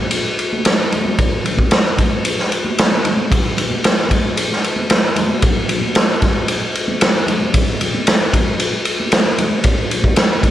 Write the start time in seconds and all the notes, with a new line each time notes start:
0.11 ride
0.39 ride
0.53 high conga
0.65 snare, ride
0.92 ride, low conga
1.05 high conga
1.19 kick, ride, low conga
1.44 ride, low conga
1.57 kick, high conga
1.71 snare, ride
1.97 kick, ride, high conga, low conga
2.25 ride
2.39 snare
2.52 ride
2.65 high conga
2.79 snare, ride
2.92 high conga
3.05 ride, low conga
3.17 high conga
3.30 kick, ride, low conga
3.57 ride, low conga
3.70 high conga
3.84 snare, ride
4.09 kick, ride, high conga, low conga
4.37 ride
4.52 snare
4.64 ride
4.76 high conga
4.90 snare, ride
5.16 ride, low conga
5.29 high conga
5.42 kick, ride, low conga
5.69 ride, low conga
5.81 high conga
5.95 snare, ride
6.22 kick, snare, ride, low conga
6.48 ride
6.75 ride
6.88 high conga
7.01 snare, ride
7.27 ride, low conga
7.41 high conga
7.54 kick, ride, low conga
7.81 ride, low conga
7.94 high conga
8.07 snare, ride
8.33 kick, ride, high conga, low conga
8.60 ride
8.85 ride
9.00 high conga
9.12 snare, ride
9.38 ride, low conga
9.51 high conga
9.64 kick, ride
9.89 ride, low conga
10.02 kick, high conga
10.16 snare, ride
10.41 kick, ride, high conga, low conga